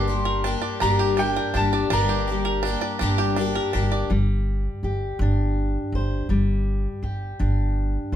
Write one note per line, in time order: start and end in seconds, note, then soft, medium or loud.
0.00 0.54 G1 loud
0.00 0.43 D4 medium
0.00 0.62 G4 medium
0.00 0.85 C6 medium
0.08 0.43 G3 soft
0.08 0.44 A#3 soft
0.08 0.45 D4 medium
0.08 0.44 G4 medium
0.25 0.99 A#4 medium
0.44 0.81 G3 medium
0.44 0.81 A#3 medium
0.44 0.79 D4 medium
0.44 0.82 D4 medium
0.44 0.80 G4 medium
0.62 1.35 D5 medium
0.80 1.37 G1 loud
0.80 1.19 G2 medium
0.80 1.16 G3 medium
0.80 1.18 A#3 medium
0.80 1.16 D4 medium
0.80 1.19 D4 medium
0.80 1.18 G4 medium
0.80 1.19 A#5 medium
0.84 1.19 D3 medium
0.99 1.73 G4 medium
1.17 1.54 G3 medium
1.17 1.55 A#3 medium
1.17 1.53 D4 medium
1.17 1.55 D4 medium
1.17 1.56 G5 medium
1.21 1.54 G4 medium
1.36 2.09 A#4 medium
1.54 1.82 G1 medium
1.54 1.92 A#3 soft
1.54 1.89 D4 medium
1.54 1.92 D4 medium
1.54 1.91 G4 medium
1.54 1.93 A5 medium
1.58 1.92 G3 soft
1.73 2.46 D5 medium
1.90 2.73 G1 medium
1.90 2.28 G2 medium
1.90 2.28 D3 medium
1.90 2.29 G3 medium
1.90 2.29 A#3 medium
1.90 2.62 D4 medium
1.90 2.28 D4 medium
1.90 3.35 A#5 medium
1.94 2.26 G4 medium
2.09 2.82 G4 medium
2.28 2.65 A#3 soft
2.28 2.65 D4 soft
2.28 2.64 G4 soft
2.32 2.64 G3 soft
2.45 3.19 A#4 medium
2.63 3.01 G3 medium
2.63 3.01 A#3 medium
2.63 2.98 D4 medium
2.67 3.01 D4 medium
2.67 3.00 G4 medium
2.81 3.55 D5 medium
2.99 3.56 G1 medium
2.99 3.39 G2 medium
2.99 3.39 D3 medium
2.99 3.36 G3 medium
2.99 3.37 A#3 medium
2.99 3.35 D4 medium
2.99 3.38 D4 medium
2.99 3.38 G4 medium
3.18 3.92 G4 medium
3.36 3.74 G3 medium
3.36 3.74 A#3 medium
3.36 3.72 D4 medium
3.36 3.73 D4 medium
3.41 3.72 G4 medium
3.55 4.11 A#4 medium
3.73 4.02 G1 medium
3.73 4.11 A#3 medium
3.73 4.10 D4 medium
3.73 4.11 D4 medium
3.73 4.10 G4 medium
3.77 4.12 G3 soft
3.92 4.10 D5 medium
4.10 4.66 G1 medium
4.10 6.29 G3 medium
4.83 5.11 G1 medium
4.83 6.26 G4 soft
5.19 5.75 G1 loud
5.19 6.26 D4 medium
5.92 6.21 G1 medium
5.92 6.27 C5 medium
6.29 6.85 G1 medium
6.29 8.16 G3 medium
7.03 7.31 G1 medium
7.03 8.16 G4 soft
7.39 7.95 G1 medium
7.39 8.16 D4 medium
8.12 8.16 G1 medium